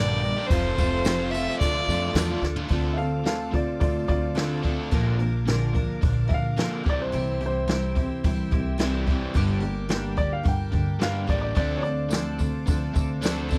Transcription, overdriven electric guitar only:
Already playing: G2 D3
0.08 G3 A#3 D4 G4
0.23 muted overdriven electric guitar stroke
0.36 G3 A#3 D4 G4
0.49 F2 C3 F3 A3 C4 F4
0.78 F3 A3 C4 F4
1.06 F2 C3 F3 A3 C4 F4
1.20 F3 A3 C4 F4
1.33 F3 A3 C4 F4
1.48 F3 A3 C4 F4
1.60 D3 A3 D4 F4
1.75 A3 D4 F4
1.89 D3 A3 D4 F4
2.16 D3 A3 D4 F4
2.30 A3 D4 F4
2.44 muted overdriven electric guitar stroke
2.56 A3 D4 F4
2.71 D3 A3 D4
2.98 D3 A3
3.25 D3 A3
3.52 D3 A3
3.81 D3 A3
4.09 D3 A3
4.36 D3 A3 D4
4.63 D3 A3 D4
4.92 A#2 D3 A#3
5.19 A#2 D3
5.46 A#2 D3
5.73 A#2 D3
6.01 A#2 D3
6.30 A#2 D3
6.57 A#2 D3 A#3
6.86 C3 E3 G3
7.14 C3 E3
7.41 C3 E3
7.68 C3 E3
7.96 C3 E3
8.25 C3 E3
8.52 C3 E3
8.79 C3 E3 G3
9.07 C3 E3 G3
9.35 G2 D3 G3
9.62 G2 D3
9.89 G2 D3
10.17 G2 D3
10.45 G2 D3
10.72 G2 D3
11.00 G2 D3 G3
11.27 G2 D3 G3
11.55 D3 A3 D4
11.83 D3 A3
12.09 D3 A3
12.39 D3 A3
12.66 D3 A3
12.93 D3 A3
13.21 D3 A3 D4
13.50 D3 A3 D4

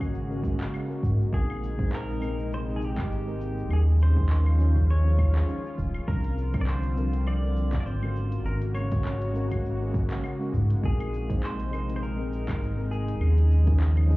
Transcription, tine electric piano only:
Already playing: G#3 C#4 F#4 A#4
0.28 G#3 C#4 F#4 A#4
0.87 G#3 C#4 F#4 A#4
1.30 G#3 C4 D#4 A#4
1.77 G#3 C4 D#4 C5
2.19 G#3 C4 D#4 A#4
2.65 G#3 C4 D#4 A#4
3.25 G#3 C4 D#4 A#4
3.68 F3 C#4 D#4 G#4
4.15 F3 C#4 D#4 A#4
4.57 F3 C#4 D#4 G#4
5.04 F3 C#4 D#4 G#4
5.46 F3 C#4 D#4 G#4
6.06 F3 C4 D4 A#4
6.52 F3 C4 D4 C5
6.95 F3 C4 D4 A#4
7.41 F3 C4 D4 A#4
8.02 G#3 C#4 F#4 A#4
8.44 G#3 C#4 F#4 A#4
8.91 G#3 C#4 F#4 C#5
9.33 G#3 C#4 F#4 A#4
9.79 G#3 C#4 F#4 A#4
10.39 G#3 C#4 F#4 A#4
10.81 G#3 C4 D#4 A#4
11.28 G#3 C4 D#4 C5
11.71 G#3 C4 D#4 A#4
12.16 G#3 C4 D#4 A#4
12.75 G#3 C4 D#4 A#4
13.19 F3 C#4 D#4 G#4
13.64 F3 C#4 D#4 A#4
14.07 F3 C#4 D#4 G#4

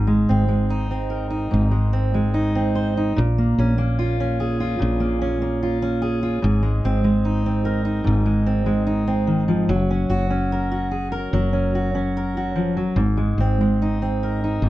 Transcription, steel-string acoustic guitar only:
Already playing: G#2
0.07 G#3
0.29 C4
0.48 G#3
0.70 D#4
0.91 C4
1.10 A#4
1.30 D#4
1.51 G#2
1.71 G#3
1.93 C4
2.14 G#3
2.34 D#4
2.55 C4
2.75 C5
2.97 D#4
3.16 A#2
3.38 A#3
3.59 C#4
3.78 A#3
3.99 F4
4.20 C#4
4.40 G#4
4.60 F4
4.79 A#2
5.00 A#3
5.22 C#4
5.42 A#3
5.63 F4
5.82 C#4
6.02 G#4
6.23 F4
6.42 G#2
6.63 G#3
6.85 C4
7.04 G#3
7.25 D#4
7.46 C4
7.65 A#4
7.85 D#4
8.04 G#2
8.26 G#3
8.46 C4
8.66 G#3
8.87 D#4
9.08 C4
9.27 D#3
9.48 F3
9.69 F#3
9.91 C#4
10.10 F#4
10.30 C#4
10.52 A#4
10.71 F#4
10.91 G#4
11.12 A#4
11.33 F#3
11.53 C#4
11.75 F#4
11.95 C#4
12.17 A#4
12.37 F#4
12.56 F3
12.77 F#3
12.96 G#2
13.17 G#3
13.40 C4
13.61 G#3
13.82 D#4
14.02 C4
14.23 A#4
14.44 D#4
14.63 G#2

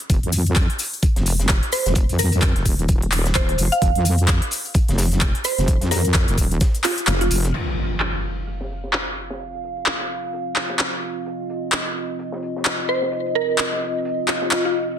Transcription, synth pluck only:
1.73 C5
2.19 A#4
3.35 C5
3.72 F5
5.45 C5
5.91 A#4
6.84 F4
7.07 F4
7.21 F4
12.89 C5
13.35 A#4
14.28 F4
14.52 F4
14.65 F4

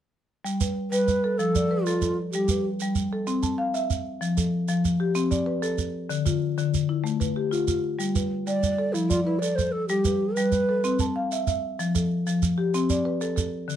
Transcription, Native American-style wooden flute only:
0.91 B4
1.38 A4
1.84 F4
2.32 G4
8.48 D5
8.93 E4
9.09 F4
9.24 E4
9.39 D5
9.55 C5
9.72 A4
9.88 G4
10.36 B4

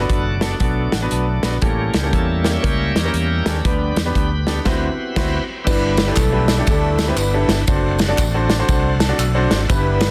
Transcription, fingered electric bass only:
0.60 B1
0.93 A1
1.12 B1
1.62 A1
1.94 C#2
2.13 E2
2.64 C#2
2.95 E2
3.14 E2
3.65 D2
3.96 E2
4.15 D2
4.66 D2
5.16 D2
5.67 G1
6.17 B1
6.67 D2
7.16 G1
7.48 G1
7.68 F#1
8.18 A1
8.69 C2
9.18 B1
9.50 G#1
9.70 G1

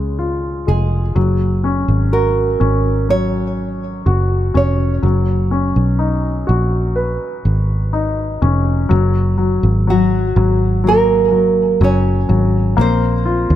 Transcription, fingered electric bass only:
Already playing: C#2
0.68 F1
1.16 F#1
1.88 G#1
2.61 G#1
4.06 F#1
4.55 F1
5.03 F#1
5.76 B1
6.49 A#1
7.45 G#1
8.42 F1
8.91 F#1
9.63 G#1
10.36 G#1
11.81 F#1
12.29 G#1
12.78 A#1
13.50 D#2

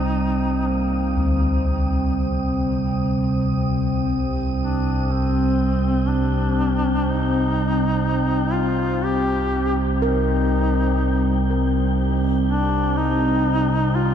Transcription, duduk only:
Already playing: D#4
0.68 A#3
4.61 D4
5.11 C4
6.08 D4
7.08 D#4
8.54 F4
9.04 G4
10.04 D#4
12.49 D4
12.97 D#4
13.95 F4

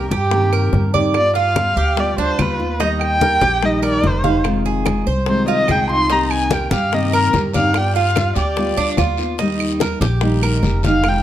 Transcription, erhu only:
Already playing: G4
0.11 G4
1.17 D5
1.37 F5
1.99 D5
2.19 C5
2.41 B4
2.83 D#5
3.02 G5
3.65 D#5
3.85 D5
4.07 C5
5.29 C5
5.49 D#5
5.71 G5
5.91 C6
6.12 A#5
6.31 G#5
6.53 G5
6.73 F5
6.94 D#5
7.14 A#4
7.55 F5
7.77 G5
7.97 F5
8.37 D5
10.86 F5
11.08 G5

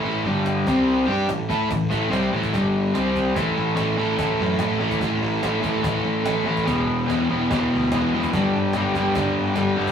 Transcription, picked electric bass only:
0.02 A1
0.23 G1
0.66 C2
1.07 G2
1.27 A1
1.50 A2
1.71 A1
1.92 A1
2.11 C2
2.32 A1
2.54 G1
2.95 C2
3.36 A1
3.57 A1
3.79 A1
3.99 A1
4.18 A1
4.40 F#2
4.60 A1
4.80 A1
5.02 A1
5.22 A1
5.43 A1
5.64 A1
5.84 A1
6.04 A1
6.25 A1
6.44 A1
6.68 E1
6.87 E1
7.11 E1
7.30 E1
7.50 E1
7.73 D2
7.93 E1
8.13 E1
8.33 G1
8.55 G1
8.75 G1
8.94 G1
9.16 G1
9.39 G1
9.58 G1
9.79 G1

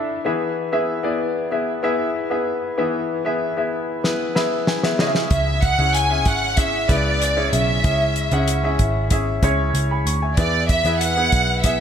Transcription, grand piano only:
Already playing: D4 E4 A4 E5
0.25 E3 B3 E4 G#4 E5
0.72 B3 E4 G#4 E5
1.03 B3 E4 G#4 D5
1.51 B3 E4 G#4 E5
1.83 B3 E4 G#4 E5
2.30 B3 E4 G#4 E5
2.78 E3 B3 E4 G#4 E5
3.25 B3 E4 G#4 E5
3.57 B3 E4 G#4 E5
4.04 B3 E4 G#4 B4
4.35 B3 E4 G#4 E5 B5
4.68 G#5
4.83 B3 E4 G#4 E5
4.99 C#3 C#4 E4 G#4 D#5 E5
5.07 E5
5.78 C#4 E4 G#4 F#5
6.10 C#4 E4 G#4 E5
6.56 C#4 E4 G#4 E5
6.88 C#3 E4 G#4 B4
7.36 C#4 E4 G#4 C#5
7.53 C#3
7.84 C#4 E4 G#4 E5
8.32 C#4 E4 G#4 F#5
8.63 C#4 E4 G#4 E5
9.11 C#4 E4 G#4 E5
9.43 C#4 E4 G#4 C#5
9.91 G#5 B5
10.07 C#6
10.22 E5 G#5
10.38 E3 B3 E4 G#4 E5
10.85 B3 E4 G#4 B4
11.17 B3 E4 G#4 B4
11.64 B3 E4 G#4 E5

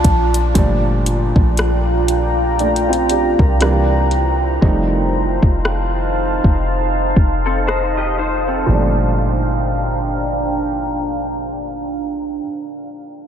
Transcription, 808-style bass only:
0.04 A#1
0.55 G1
1.36 A#1
3.39 C2
4.62 F1
5.43 F1
6.44 F1
7.16 F1
8.69 G1

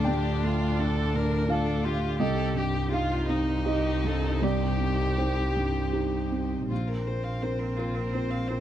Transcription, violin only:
Already playing: D4
1.47 D4
1.85 F4
2.19 G4
2.57 G4
2.91 F4
3.29 D#4
4.43 G4
6.71 F4
6.88 A#4
7.07 C5
7.24 F5
7.43 C5
7.59 A#4
7.77 F4
7.95 A#4
8.13 C5
8.31 F5
8.48 C5

